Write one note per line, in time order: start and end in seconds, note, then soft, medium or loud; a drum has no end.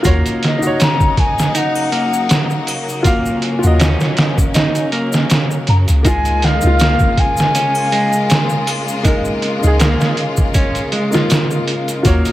0.03 0.23 D#2 loud
0.03 12.32 C#3 medium
0.03 6.01 F#3 medium
0.03 0.76 A#3 medium
0.03 6.01 A#3 medium
0.03 3.02 D#4 medium
0.03 0.57 F4 medium
0.03 0.58 F#4 medium
0.03 0.59 C#5 medium
0.03 kick loud
0.03 closed hi-hat medium
0.03 shaker medium
0.26 closed hi-hat soft
0.26 shaker soft
0.43 0.79 D#5 loud
0.43 snare soft
0.43 closed hi-hat medium
0.59 2.99 D#4 medium
0.59 3.01 F#4 medium
0.59 shaker medium
0.67 3.03 C#5 loud
0.80 1.16 C#4 medium
0.80 1.21 A#5 loud
0.80 snare loud
0.80 closed hi-hat medium
0.80 shaker medium
1.00 kick loud
1.00 shaker soft
1.17 1.58 G#5 loud
1.17 kick medium
1.17 closed hi-hat medium
1.39 snare soft
1.39 shaker medium
1.55 1.89 D#4 medium
1.55 2.68 F#5 medium
1.55 closed hi-hat medium
1.55 shaker medium
1.75 triangle medium
1.75 shaker soft
1.92 2.28 A#3 medium
1.92 closed hi-hat medium
2.13 shaker medium
2.29 snare loud
2.29 closed hi-hat medium
2.29 shaker medium
2.50 shaker soft
2.67 closed hi-hat medium
2.67 triangle medium
2.89 shaker medium
3.03 3.76 A#3 medium
3.03 6.02 C#4 medium
3.03 3.14 F4 medium
3.03 3.15 F#4 medium
3.03 kick loud
3.03 closed hi-hat medium
3.03 shaker medium
3.07 3.16 F5 medium
3.26 shaker soft
3.42 closed hi-hat medium
3.59 5.99 F4 medium
3.63 3.96 D#2 medium
3.63 6.01 F#4 medium
3.63 6.03 D#5 loud
3.63 shaker medium
3.79 4.16 C#4 medium
3.79 snare loud
3.79 closed hi-hat medium
3.79 shaker medium
4.00 snare soft
4.00 shaker soft
4.17 snare loud
4.17 closed hi-hat medium
4.38 kick loud
4.38 shaker medium
4.54 4.89 D#4 medium
4.54 snare loud
4.54 closed hi-hat medium
4.54 shaker medium
4.75 closed hi-hat soft
4.75 shaker soft
4.92 5.28 A#3 medium
4.92 closed hi-hat medium
5.13 snare soft
5.13 shaker medium
5.30 snare loud
5.30 closed hi-hat medium
5.30 shaker medium
5.51 shaker soft
5.67 5.86 F#2 medium
5.67 5.77 A#5 loud
5.67 closed hi-hat medium
5.88 6.59 C#2 medium
5.88 closed hi-hat soft
5.88 shaker medium
6.03 12.01 G#3 medium
6.03 6.77 G#3 medium
6.03 6.57 A#3 medium
6.03 12.01 A#3 medium
6.03 6.58 D#4 medium
6.03 12.01 F4 medium
6.03 6.59 F4 medium
6.03 6.46 G#5 loud
6.03 kick loud
6.03 closed hi-hat medium
6.03 shaker medium
6.25 closed hi-hat soft
6.25 shaker soft
6.42 7.21 F5 loud
6.42 snare soft
6.42 closed hi-hat medium
6.59 8.99 A#3 medium
6.59 9.01 D#4 medium
6.59 shaker medium
6.64 6.96 C#2 medium
6.64 9.03 F4 loud
6.79 7.16 A#3 medium
6.79 snare loud
6.79 closed hi-hat medium
6.79 shaker medium
6.99 kick loud
6.99 shaker soft
7.17 8.68 G#5 loud
7.17 kick loud
7.17 closed hi-hat medium
7.37 snare soft
7.37 shaker medium
7.55 7.89 C#4 medium
7.55 closed hi-hat medium
7.55 shaker medium
7.75 triangle medium
7.75 shaker soft
7.92 8.28 G#3 medium
7.92 closed hi-hat medium
8.13 shaker medium
8.30 snare loud
8.30 closed hi-hat medium
8.30 shaker medium
8.49 shaker soft
8.67 closed hi-hat medium
8.67 triangle medium
8.88 shaker medium
9.03 9.76 G#3 medium
9.03 9.14 A#3 medium
9.03 9.15 D#4 medium
9.03 kick loud
9.03 closed hi-hat medium
9.03 shaker medium
9.07 9.17 A#4 medium
9.25 shaker soft
9.42 closed hi-hat medium
9.59 11.07 A#3 medium
9.63 9.96 C#2 medium
9.63 11.09 D#4 medium
9.63 shaker medium
9.67 11.11 G#4 loud
9.79 10.16 A#3 medium
9.79 snare loud
9.79 closed hi-hat medium
9.79 shaker medium
10.01 snare medium
10.01 shaker soft
10.17 closed hi-hat medium
10.37 kick medium
10.37 shaker medium
10.54 10.89 C#4 medium
10.54 kick loud
10.54 closed hi-hat medium
10.54 shaker medium
10.75 closed hi-hat soft
10.75 shaker soft
10.92 11.28 G#3 medium
10.92 closed hi-hat medium
11.11 11.21 A#3 loud
11.11 11.22 D#4 medium
11.11 11.22 F4 loud
11.11 snare soft
11.11 shaker medium
11.30 snare loud
11.30 closed hi-hat medium
11.30 shaker medium
11.51 shaker soft
11.67 closed hi-hat medium
11.88 closed hi-hat soft
11.88 shaker medium
12.03 12.23 D#2 loud
12.03 12.32 F#3 medium
12.03 12.32 A#3 medium
12.03 12.32 D#4 medium
12.03 12.32 F4 medium
12.03 12.32 F#4 medium
12.03 kick loud
12.03 closed hi-hat medium
12.03 shaker medium
12.07 12.32 C#5 medium
12.25 closed hi-hat soft
12.25 shaker soft